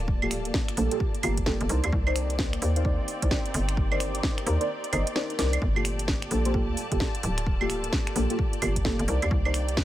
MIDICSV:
0, 0, Header, 1, 6, 480
1, 0, Start_track
1, 0, Key_signature, -2, "minor"
1, 0, Tempo, 461538
1, 83, Time_signature, 4, 2, 24, 8
1, 10234, End_track
2, 0, Start_track
2, 0, Title_t, "String section"
2, 0, Program_c, 0, 48
2, 0, Note_on_c, 0, 67, 83
2, 0, Note_on_c, 0, 74, 83
2, 0, Note_on_c, 0, 81, 68
2, 1763, Note_on_c, 0, 60, 90
2, 3033, Note_off_c, 0, 81, 0
2, 6031, Note_on_c, 0, 81, 75
2, 7283, Note_off_c, 0, 60, 0
2, 9443, Note_on_c, 0, 60, 80
2, 10110, Note_off_c, 0, 81, 0
2, 10234, Note_off_c, 0, 60, 0
2, 10234, Note_off_c, 0, 67, 0
2, 10234, Note_off_c, 0, 74, 0
2, 10234, End_track
3, 0, Start_track
3, 0, Title_t, "Synth stab"
3, 0, Program_c, 1, 62
3, 232, Note_on_c, 1, 67, 76
3, 233, Note_on_c, 1, 58, 83
3, 233, Note_on_c, 1, 65, 76
3, 233, Note_on_c, 1, 69, 94
3, 781, Note_off_c, 1, 58, 0
3, 781, Note_off_c, 1, 65, 0
3, 781, Note_off_c, 1, 67, 0
3, 781, Note_off_c, 1, 69, 0
3, 804, Note_on_c, 1, 58, 89
3, 804, Note_on_c, 1, 69, 97
3, 805, Note_on_c, 1, 65, 83
3, 805, Note_on_c, 1, 67, 80
3, 930, Note_off_c, 1, 58, 0
3, 930, Note_off_c, 1, 69, 0
3, 931, Note_off_c, 1, 65, 0
3, 931, Note_off_c, 1, 67, 0
3, 952, Note_on_c, 1, 58, 90
3, 952, Note_on_c, 1, 65, 82
3, 953, Note_on_c, 1, 67, 83
3, 953, Note_on_c, 1, 69, 95
3, 1041, Note_off_c, 1, 58, 0
3, 1041, Note_off_c, 1, 65, 0
3, 1042, Note_off_c, 1, 67, 0
3, 1042, Note_off_c, 1, 69, 0
3, 1283, Note_on_c, 1, 58, 80
3, 1283, Note_on_c, 1, 65, 73
3, 1283, Note_on_c, 1, 67, 74
3, 1283, Note_on_c, 1, 70, 88
3, 1430, Note_off_c, 1, 58, 0
3, 1430, Note_off_c, 1, 65, 0
3, 1430, Note_off_c, 1, 67, 0
3, 1430, Note_off_c, 1, 70, 0
3, 1523, Note_on_c, 1, 69, 104
3, 1524, Note_on_c, 1, 58, 91
3, 1524, Note_on_c, 1, 65, 82
3, 1524, Note_on_c, 1, 67, 84
3, 1741, Note_off_c, 1, 58, 0
3, 1741, Note_off_c, 1, 67, 0
3, 1741, Note_off_c, 1, 69, 0
3, 1742, Note_off_c, 1, 65, 0
3, 1764, Note_on_c, 1, 63, 87
3, 1764, Note_on_c, 1, 70, 80
3, 1764, Note_on_c, 1, 74, 96
3, 1765, Note_on_c, 1, 72, 80
3, 1965, Note_off_c, 1, 63, 0
3, 1965, Note_off_c, 1, 70, 0
3, 1965, Note_off_c, 1, 72, 0
3, 1965, Note_off_c, 1, 74, 0
3, 2153, Note_on_c, 1, 70, 74
3, 2153, Note_on_c, 1, 72, 75
3, 2153, Note_on_c, 1, 74, 92
3, 2154, Note_on_c, 1, 63, 82
3, 2702, Note_off_c, 1, 63, 0
3, 2702, Note_off_c, 1, 70, 0
3, 2702, Note_off_c, 1, 72, 0
3, 2702, Note_off_c, 1, 74, 0
3, 2722, Note_on_c, 1, 72, 70
3, 2722, Note_on_c, 1, 74, 85
3, 2723, Note_on_c, 1, 63, 77
3, 2723, Note_on_c, 1, 70, 71
3, 2836, Note_off_c, 1, 63, 0
3, 2836, Note_off_c, 1, 70, 0
3, 2836, Note_off_c, 1, 72, 0
3, 2836, Note_off_c, 1, 74, 0
3, 2872, Note_on_c, 1, 63, 86
3, 2872, Note_on_c, 1, 70, 80
3, 2872, Note_on_c, 1, 72, 80
3, 2873, Note_on_c, 1, 77, 96
3, 2949, Note_off_c, 1, 63, 0
3, 2949, Note_off_c, 1, 70, 0
3, 2949, Note_off_c, 1, 72, 0
3, 2949, Note_off_c, 1, 77, 0
3, 2963, Note_on_c, 1, 63, 87
3, 2963, Note_on_c, 1, 70, 76
3, 2963, Note_on_c, 1, 72, 77
3, 2964, Note_on_c, 1, 74, 96
3, 3317, Note_off_c, 1, 63, 0
3, 3317, Note_off_c, 1, 70, 0
3, 3317, Note_off_c, 1, 72, 0
3, 3317, Note_off_c, 1, 74, 0
3, 3352, Note_on_c, 1, 63, 76
3, 3352, Note_on_c, 1, 70, 71
3, 3352, Note_on_c, 1, 72, 71
3, 3352, Note_on_c, 1, 74, 90
3, 3528, Note_off_c, 1, 70, 0
3, 3528, Note_off_c, 1, 74, 0
3, 3529, Note_off_c, 1, 63, 0
3, 3529, Note_off_c, 1, 72, 0
3, 4072, Note_on_c, 1, 63, 86
3, 4072, Note_on_c, 1, 70, 75
3, 4072, Note_on_c, 1, 72, 76
3, 4072, Note_on_c, 1, 74, 92
3, 4621, Note_off_c, 1, 63, 0
3, 4621, Note_off_c, 1, 70, 0
3, 4621, Note_off_c, 1, 72, 0
3, 4621, Note_off_c, 1, 74, 0
3, 4641, Note_on_c, 1, 70, 78
3, 4641, Note_on_c, 1, 72, 80
3, 4641, Note_on_c, 1, 74, 94
3, 4642, Note_on_c, 1, 63, 90
3, 4769, Note_off_c, 1, 63, 0
3, 4769, Note_off_c, 1, 70, 0
3, 4769, Note_off_c, 1, 72, 0
3, 4769, Note_off_c, 1, 74, 0
3, 4789, Note_on_c, 1, 70, 83
3, 4790, Note_on_c, 1, 63, 88
3, 4790, Note_on_c, 1, 72, 82
3, 4790, Note_on_c, 1, 74, 99
3, 4880, Note_off_c, 1, 63, 0
3, 4880, Note_off_c, 1, 70, 0
3, 4880, Note_off_c, 1, 72, 0
3, 4880, Note_off_c, 1, 74, 0
3, 5120, Note_on_c, 1, 63, 80
3, 5120, Note_on_c, 1, 70, 73
3, 5120, Note_on_c, 1, 75, 89
3, 5121, Note_on_c, 1, 72, 76
3, 5269, Note_off_c, 1, 63, 0
3, 5269, Note_off_c, 1, 70, 0
3, 5269, Note_off_c, 1, 72, 0
3, 5269, Note_off_c, 1, 75, 0
3, 5360, Note_on_c, 1, 63, 93
3, 5361, Note_on_c, 1, 70, 84
3, 5361, Note_on_c, 1, 72, 85
3, 5361, Note_on_c, 1, 74, 103
3, 5580, Note_off_c, 1, 63, 0
3, 5580, Note_off_c, 1, 70, 0
3, 5580, Note_off_c, 1, 72, 0
3, 5580, Note_off_c, 1, 74, 0
3, 5601, Note_on_c, 1, 70, 81
3, 5602, Note_on_c, 1, 63, 87
3, 5602, Note_on_c, 1, 72, 82
3, 5602, Note_on_c, 1, 74, 97
3, 5804, Note_off_c, 1, 63, 0
3, 5804, Note_off_c, 1, 70, 0
3, 5804, Note_off_c, 1, 72, 0
3, 5804, Note_off_c, 1, 74, 0
3, 5990, Note_on_c, 1, 65, 75
3, 5990, Note_on_c, 1, 69, 89
3, 5991, Note_on_c, 1, 58, 84
3, 5991, Note_on_c, 1, 67, 78
3, 6540, Note_off_c, 1, 58, 0
3, 6540, Note_off_c, 1, 65, 0
3, 6540, Note_off_c, 1, 67, 0
3, 6540, Note_off_c, 1, 69, 0
3, 6561, Note_on_c, 1, 69, 85
3, 6562, Note_on_c, 1, 58, 76
3, 6562, Note_on_c, 1, 65, 71
3, 6562, Note_on_c, 1, 67, 71
3, 6676, Note_off_c, 1, 58, 0
3, 6676, Note_off_c, 1, 65, 0
3, 6676, Note_off_c, 1, 67, 0
3, 6676, Note_off_c, 1, 69, 0
3, 6711, Note_on_c, 1, 65, 81
3, 6711, Note_on_c, 1, 67, 80
3, 6711, Note_on_c, 1, 72, 97
3, 6712, Note_on_c, 1, 58, 87
3, 6789, Note_off_c, 1, 58, 0
3, 6789, Note_off_c, 1, 65, 0
3, 6789, Note_off_c, 1, 67, 0
3, 6789, Note_off_c, 1, 72, 0
3, 6801, Note_on_c, 1, 65, 79
3, 6802, Note_on_c, 1, 58, 87
3, 6802, Note_on_c, 1, 67, 77
3, 6802, Note_on_c, 1, 69, 94
3, 7156, Note_off_c, 1, 58, 0
3, 7156, Note_off_c, 1, 65, 0
3, 7156, Note_off_c, 1, 67, 0
3, 7156, Note_off_c, 1, 69, 0
3, 7191, Note_on_c, 1, 65, 71
3, 7191, Note_on_c, 1, 67, 72
3, 7192, Note_on_c, 1, 58, 79
3, 7192, Note_on_c, 1, 69, 88
3, 7368, Note_off_c, 1, 58, 0
3, 7368, Note_off_c, 1, 65, 0
3, 7368, Note_off_c, 1, 67, 0
3, 7368, Note_off_c, 1, 69, 0
3, 7912, Note_on_c, 1, 69, 93
3, 7913, Note_on_c, 1, 58, 83
3, 7913, Note_on_c, 1, 65, 77
3, 7913, Note_on_c, 1, 67, 76
3, 8461, Note_off_c, 1, 58, 0
3, 8461, Note_off_c, 1, 65, 0
3, 8461, Note_off_c, 1, 67, 0
3, 8461, Note_off_c, 1, 69, 0
3, 8483, Note_on_c, 1, 58, 86
3, 8483, Note_on_c, 1, 65, 78
3, 8483, Note_on_c, 1, 67, 81
3, 8483, Note_on_c, 1, 69, 94
3, 8610, Note_off_c, 1, 58, 0
3, 8610, Note_off_c, 1, 65, 0
3, 8610, Note_off_c, 1, 67, 0
3, 8610, Note_off_c, 1, 69, 0
3, 8633, Note_on_c, 1, 58, 89
3, 8633, Note_on_c, 1, 65, 81
3, 8633, Note_on_c, 1, 67, 80
3, 8634, Note_on_c, 1, 69, 100
3, 8722, Note_off_c, 1, 58, 0
3, 8722, Note_off_c, 1, 65, 0
3, 8722, Note_off_c, 1, 67, 0
3, 8722, Note_off_c, 1, 69, 0
3, 8965, Note_on_c, 1, 58, 82
3, 8965, Note_on_c, 1, 65, 74
3, 8965, Note_on_c, 1, 67, 74
3, 8965, Note_on_c, 1, 70, 87
3, 9111, Note_off_c, 1, 58, 0
3, 9111, Note_off_c, 1, 65, 0
3, 9111, Note_off_c, 1, 67, 0
3, 9111, Note_off_c, 1, 70, 0
3, 9204, Note_on_c, 1, 65, 84
3, 9204, Note_on_c, 1, 69, 105
3, 9205, Note_on_c, 1, 58, 95
3, 9205, Note_on_c, 1, 67, 85
3, 9422, Note_off_c, 1, 58, 0
3, 9422, Note_off_c, 1, 65, 0
3, 9422, Note_off_c, 1, 67, 0
3, 9422, Note_off_c, 1, 69, 0
3, 9444, Note_on_c, 1, 74, 97
3, 9445, Note_on_c, 1, 63, 88
3, 9445, Note_on_c, 1, 70, 78
3, 9445, Note_on_c, 1, 72, 81
3, 9645, Note_off_c, 1, 63, 0
3, 9645, Note_off_c, 1, 70, 0
3, 9645, Note_off_c, 1, 72, 0
3, 9645, Note_off_c, 1, 74, 0
3, 9834, Note_on_c, 1, 63, 85
3, 9834, Note_on_c, 1, 70, 76
3, 9834, Note_on_c, 1, 72, 76
3, 9834, Note_on_c, 1, 74, 91
3, 10234, Note_off_c, 1, 63, 0
3, 10234, Note_off_c, 1, 70, 0
3, 10234, Note_off_c, 1, 72, 0
3, 10234, Note_off_c, 1, 74, 0
3, 10234, End_track
4, 0, Start_track
4, 0, Title_t, "String machine"
4, 0, Program_c, 2, 50
4, 0, Note_on_c, 2, 58, 72
4, 0, Note_on_c, 2, 65, 79
4, 0, Note_on_c, 2, 69, 72
4, 0, Note_on_c, 2, 74, 86
4, 1727, Note_off_c, 2, 69, 0
4, 1728, Note_off_c, 2, 65, 0
4, 1764, Note_on_c, 2, 63, 78
4, 1764, Note_on_c, 2, 67, 73
4, 5802, Note_off_c, 2, 58, 0
4, 5802, Note_off_c, 2, 63, 0
4, 5803, Note_off_c, 2, 67, 0
4, 5842, Note_on_c, 2, 58, 72
4, 5843, Note_on_c, 2, 65, 81
4, 5843, Note_on_c, 2, 69, 75
4, 9407, Note_off_c, 2, 65, 0
4, 9407, Note_off_c, 2, 69, 0
4, 9440, Note_on_c, 2, 67, 71
4, 9441, Note_on_c, 2, 63, 81
4, 10234, Note_off_c, 2, 58, 0
4, 10234, Note_off_c, 2, 63, 0
4, 10234, Note_off_c, 2, 67, 0
4, 10234, Note_off_c, 2, 74, 0
4, 10234, End_track
5, 0, Start_track
5, 0, Title_t, "FM bass"
5, 0, Program_c, 3, 39
5, 0, Note_on_c, 3, 26, 106
5, 531, Note_off_c, 3, 26, 0
5, 803, Note_on_c, 3, 34, 93
5, 920, Note_off_c, 3, 34, 0
5, 1283, Note_on_c, 3, 31, 98
5, 1621, Note_off_c, 3, 31, 0
5, 1673, Note_on_c, 3, 31, 104
5, 1743, Note_off_c, 3, 31, 0
5, 1763, Note_on_c, 3, 36, 101
5, 1880, Note_off_c, 3, 36, 0
5, 1912, Note_on_c, 3, 39, 91
5, 1983, Note_off_c, 3, 39, 0
5, 2002, Note_on_c, 3, 36, 101
5, 2691, Note_off_c, 3, 36, 0
5, 2723, Note_on_c, 3, 39, 91
5, 3113, Note_on_c, 3, 31, 84
5, 3128, Note_off_c, 3, 39, 0
5, 3183, Note_off_c, 3, 31, 0
5, 3353, Note_on_c, 3, 36, 90
5, 3423, Note_off_c, 3, 36, 0
5, 3684, Note_on_c, 3, 31, 108
5, 4372, Note_off_c, 3, 31, 0
5, 4644, Note_on_c, 3, 39, 97
5, 4760, Note_off_c, 3, 39, 0
5, 5124, Note_on_c, 3, 31, 104
5, 5241, Note_off_c, 3, 31, 0
5, 5603, Note_on_c, 3, 36, 83
5, 5804, Note_off_c, 3, 36, 0
5, 5843, Note_on_c, 3, 31, 102
5, 6531, Note_off_c, 3, 31, 0
5, 6563, Note_on_c, 3, 34, 95
5, 6954, Note_on_c, 3, 38, 83
5, 6970, Note_off_c, 3, 34, 0
5, 7024, Note_off_c, 3, 38, 0
5, 7193, Note_on_c, 3, 31, 89
5, 7264, Note_off_c, 3, 31, 0
5, 7524, Note_on_c, 3, 26, 109
5, 8212, Note_off_c, 3, 26, 0
5, 8483, Note_on_c, 3, 34, 95
5, 8600, Note_off_c, 3, 34, 0
5, 8964, Note_on_c, 3, 31, 96
5, 9301, Note_off_c, 3, 31, 0
5, 9353, Note_on_c, 3, 31, 103
5, 9424, Note_off_c, 3, 31, 0
5, 9443, Note_on_c, 3, 36, 102
5, 9560, Note_off_c, 3, 36, 0
5, 9593, Note_on_c, 3, 39, 93
5, 9663, Note_off_c, 3, 39, 0
5, 9684, Note_on_c, 3, 36, 100
5, 10234, Note_off_c, 3, 36, 0
5, 10234, End_track
6, 0, Start_track
6, 0, Title_t, "Drums"
6, 82, Note_on_c, 9, 36, 118
6, 186, Note_off_c, 9, 36, 0
6, 231, Note_on_c, 9, 75, 84
6, 321, Note_on_c, 9, 26, 63
6, 321, Note_on_c, 9, 46, 106
6, 335, Note_off_c, 9, 75, 0
6, 425, Note_off_c, 9, 26, 0
6, 425, Note_off_c, 9, 46, 0
6, 470, Note_on_c, 9, 42, 68
6, 561, Note_on_c, 9, 38, 108
6, 562, Note_on_c, 9, 36, 120
6, 574, Note_off_c, 9, 42, 0
6, 665, Note_off_c, 9, 38, 0
6, 666, Note_off_c, 9, 36, 0
6, 712, Note_on_c, 9, 26, 63
6, 712, Note_on_c, 9, 42, 39
6, 802, Note_on_c, 9, 46, 105
6, 816, Note_off_c, 9, 26, 0
6, 816, Note_off_c, 9, 42, 0
6, 906, Note_off_c, 9, 46, 0
6, 951, Note_on_c, 9, 42, 68
6, 1042, Note_on_c, 9, 36, 113
6, 1055, Note_off_c, 9, 42, 0
6, 1146, Note_off_c, 9, 36, 0
6, 1191, Note_on_c, 9, 42, 38
6, 1281, Note_on_c, 9, 46, 106
6, 1281, Note_on_c, 9, 75, 84
6, 1295, Note_off_c, 9, 42, 0
6, 1385, Note_off_c, 9, 46, 0
6, 1385, Note_off_c, 9, 75, 0
6, 1429, Note_on_c, 9, 42, 69
6, 1432, Note_on_c, 9, 36, 58
6, 1521, Note_on_c, 9, 38, 113
6, 1522, Note_off_c, 9, 36, 0
6, 1522, Note_on_c, 9, 36, 108
6, 1533, Note_off_c, 9, 42, 0
6, 1625, Note_off_c, 9, 38, 0
6, 1626, Note_off_c, 9, 36, 0
6, 1670, Note_on_c, 9, 42, 55
6, 1761, Note_on_c, 9, 46, 109
6, 1774, Note_off_c, 9, 42, 0
6, 1865, Note_off_c, 9, 46, 0
6, 1910, Note_on_c, 9, 42, 66
6, 1910, Note_on_c, 9, 75, 65
6, 2002, Note_on_c, 9, 36, 117
6, 2014, Note_off_c, 9, 42, 0
6, 2014, Note_off_c, 9, 75, 0
6, 2106, Note_off_c, 9, 36, 0
6, 2150, Note_on_c, 9, 75, 83
6, 2243, Note_on_c, 9, 26, 65
6, 2243, Note_on_c, 9, 46, 106
6, 2254, Note_off_c, 9, 75, 0
6, 2347, Note_off_c, 9, 26, 0
6, 2347, Note_off_c, 9, 46, 0
6, 2392, Note_on_c, 9, 42, 69
6, 2482, Note_on_c, 9, 36, 117
6, 2482, Note_on_c, 9, 38, 110
6, 2496, Note_off_c, 9, 42, 0
6, 2586, Note_off_c, 9, 36, 0
6, 2586, Note_off_c, 9, 38, 0
6, 2633, Note_on_c, 9, 26, 65
6, 2633, Note_on_c, 9, 42, 40
6, 2724, Note_on_c, 9, 46, 109
6, 2737, Note_off_c, 9, 26, 0
6, 2737, Note_off_c, 9, 42, 0
6, 2828, Note_off_c, 9, 46, 0
6, 2873, Note_on_c, 9, 42, 67
6, 2962, Note_on_c, 9, 36, 114
6, 2977, Note_off_c, 9, 42, 0
6, 3066, Note_off_c, 9, 36, 0
6, 3203, Note_on_c, 9, 46, 110
6, 3307, Note_off_c, 9, 46, 0
6, 3352, Note_on_c, 9, 36, 59
6, 3353, Note_on_c, 9, 42, 72
6, 3443, Note_off_c, 9, 36, 0
6, 3443, Note_on_c, 9, 36, 110
6, 3443, Note_on_c, 9, 38, 113
6, 3457, Note_off_c, 9, 42, 0
6, 3547, Note_off_c, 9, 36, 0
6, 3547, Note_off_c, 9, 38, 0
6, 3594, Note_on_c, 9, 42, 55
6, 3684, Note_on_c, 9, 46, 110
6, 3698, Note_off_c, 9, 42, 0
6, 3788, Note_off_c, 9, 46, 0
6, 3833, Note_on_c, 9, 26, 51
6, 3833, Note_on_c, 9, 42, 70
6, 3923, Note_on_c, 9, 36, 121
6, 3937, Note_off_c, 9, 26, 0
6, 3937, Note_off_c, 9, 42, 0
6, 4027, Note_off_c, 9, 36, 0
6, 4073, Note_on_c, 9, 75, 76
6, 4163, Note_on_c, 9, 26, 67
6, 4163, Note_on_c, 9, 46, 107
6, 4177, Note_off_c, 9, 75, 0
6, 4267, Note_off_c, 9, 26, 0
6, 4267, Note_off_c, 9, 46, 0
6, 4313, Note_on_c, 9, 42, 67
6, 4403, Note_on_c, 9, 36, 116
6, 4403, Note_on_c, 9, 38, 112
6, 4417, Note_off_c, 9, 42, 0
6, 4507, Note_off_c, 9, 36, 0
6, 4507, Note_off_c, 9, 38, 0
6, 4554, Note_on_c, 9, 26, 69
6, 4554, Note_on_c, 9, 42, 38
6, 4644, Note_on_c, 9, 46, 110
6, 4658, Note_off_c, 9, 26, 0
6, 4658, Note_off_c, 9, 42, 0
6, 4748, Note_off_c, 9, 46, 0
6, 4794, Note_on_c, 9, 42, 68
6, 4898, Note_off_c, 9, 42, 0
6, 5034, Note_on_c, 9, 42, 38
6, 5124, Note_on_c, 9, 46, 114
6, 5124, Note_on_c, 9, 75, 80
6, 5138, Note_off_c, 9, 42, 0
6, 5228, Note_off_c, 9, 46, 0
6, 5228, Note_off_c, 9, 75, 0
6, 5273, Note_on_c, 9, 42, 72
6, 5364, Note_on_c, 9, 38, 117
6, 5377, Note_off_c, 9, 42, 0
6, 5468, Note_off_c, 9, 38, 0
6, 5513, Note_on_c, 9, 42, 54
6, 5603, Note_on_c, 9, 38, 93
6, 5603, Note_on_c, 9, 46, 110
6, 5617, Note_off_c, 9, 42, 0
6, 5707, Note_off_c, 9, 38, 0
6, 5707, Note_off_c, 9, 46, 0
6, 5753, Note_on_c, 9, 42, 69
6, 5753, Note_on_c, 9, 75, 60
6, 5842, Note_on_c, 9, 36, 120
6, 5857, Note_off_c, 9, 42, 0
6, 5857, Note_off_c, 9, 75, 0
6, 5946, Note_off_c, 9, 36, 0
6, 5993, Note_on_c, 9, 75, 75
6, 6083, Note_on_c, 9, 26, 69
6, 6083, Note_on_c, 9, 46, 110
6, 6097, Note_off_c, 9, 75, 0
6, 6187, Note_off_c, 9, 26, 0
6, 6187, Note_off_c, 9, 46, 0
6, 6233, Note_on_c, 9, 42, 66
6, 6322, Note_on_c, 9, 38, 118
6, 6323, Note_on_c, 9, 36, 120
6, 6337, Note_off_c, 9, 42, 0
6, 6426, Note_off_c, 9, 38, 0
6, 6427, Note_off_c, 9, 36, 0
6, 6472, Note_on_c, 9, 26, 69
6, 6472, Note_on_c, 9, 42, 37
6, 6561, Note_on_c, 9, 46, 111
6, 6576, Note_off_c, 9, 26, 0
6, 6576, Note_off_c, 9, 42, 0
6, 6665, Note_off_c, 9, 46, 0
6, 6711, Note_on_c, 9, 42, 66
6, 6803, Note_on_c, 9, 36, 117
6, 6815, Note_off_c, 9, 42, 0
6, 6907, Note_off_c, 9, 36, 0
6, 7042, Note_on_c, 9, 46, 110
6, 7146, Note_off_c, 9, 46, 0
6, 7193, Note_on_c, 9, 36, 62
6, 7193, Note_on_c, 9, 42, 69
6, 7282, Note_on_c, 9, 38, 114
6, 7283, Note_off_c, 9, 36, 0
6, 7283, Note_on_c, 9, 36, 116
6, 7297, Note_off_c, 9, 42, 0
6, 7386, Note_off_c, 9, 38, 0
6, 7387, Note_off_c, 9, 36, 0
6, 7433, Note_on_c, 9, 42, 54
6, 7522, Note_on_c, 9, 46, 115
6, 7537, Note_off_c, 9, 42, 0
6, 7626, Note_off_c, 9, 46, 0
6, 7673, Note_on_c, 9, 26, 56
6, 7673, Note_on_c, 9, 42, 67
6, 7764, Note_on_c, 9, 36, 125
6, 7777, Note_off_c, 9, 26, 0
6, 7777, Note_off_c, 9, 42, 0
6, 7868, Note_off_c, 9, 36, 0
6, 7913, Note_on_c, 9, 75, 77
6, 8004, Note_on_c, 9, 26, 68
6, 8004, Note_on_c, 9, 46, 107
6, 8017, Note_off_c, 9, 75, 0
6, 8108, Note_off_c, 9, 26, 0
6, 8108, Note_off_c, 9, 46, 0
6, 8152, Note_on_c, 9, 42, 63
6, 8243, Note_on_c, 9, 36, 127
6, 8243, Note_on_c, 9, 38, 123
6, 8256, Note_off_c, 9, 42, 0
6, 8347, Note_off_c, 9, 36, 0
6, 8347, Note_off_c, 9, 38, 0
6, 8394, Note_on_c, 9, 26, 71
6, 8394, Note_on_c, 9, 42, 35
6, 8483, Note_on_c, 9, 46, 111
6, 8498, Note_off_c, 9, 26, 0
6, 8498, Note_off_c, 9, 42, 0
6, 8587, Note_off_c, 9, 46, 0
6, 8633, Note_on_c, 9, 42, 66
6, 8723, Note_on_c, 9, 36, 125
6, 8737, Note_off_c, 9, 42, 0
6, 8827, Note_off_c, 9, 36, 0
6, 8873, Note_on_c, 9, 42, 36
6, 8964, Note_on_c, 9, 46, 110
6, 8964, Note_on_c, 9, 75, 76
6, 8977, Note_off_c, 9, 42, 0
6, 9068, Note_off_c, 9, 46, 0
6, 9068, Note_off_c, 9, 75, 0
6, 9112, Note_on_c, 9, 36, 61
6, 9113, Note_on_c, 9, 42, 65
6, 9203, Note_off_c, 9, 36, 0
6, 9203, Note_on_c, 9, 36, 124
6, 9203, Note_on_c, 9, 38, 127
6, 9217, Note_off_c, 9, 42, 0
6, 9307, Note_off_c, 9, 36, 0
6, 9307, Note_off_c, 9, 38, 0
6, 9354, Note_on_c, 9, 42, 52
6, 9443, Note_on_c, 9, 46, 110
6, 9458, Note_off_c, 9, 42, 0
6, 9547, Note_off_c, 9, 46, 0
6, 9592, Note_on_c, 9, 42, 65
6, 9592, Note_on_c, 9, 75, 58
6, 9683, Note_on_c, 9, 36, 127
6, 9696, Note_off_c, 9, 42, 0
6, 9696, Note_off_c, 9, 75, 0
6, 9787, Note_off_c, 9, 36, 0
6, 9832, Note_on_c, 9, 75, 76
6, 9922, Note_on_c, 9, 26, 69
6, 9922, Note_on_c, 9, 46, 105
6, 9936, Note_off_c, 9, 75, 0
6, 10026, Note_off_c, 9, 26, 0
6, 10026, Note_off_c, 9, 46, 0
6, 10072, Note_on_c, 9, 42, 63
6, 10162, Note_on_c, 9, 36, 127
6, 10162, Note_on_c, 9, 38, 124
6, 10176, Note_off_c, 9, 42, 0
6, 10234, Note_off_c, 9, 36, 0
6, 10234, Note_off_c, 9, 38, 0
6, 10234, End_track
0, 0, End_of_file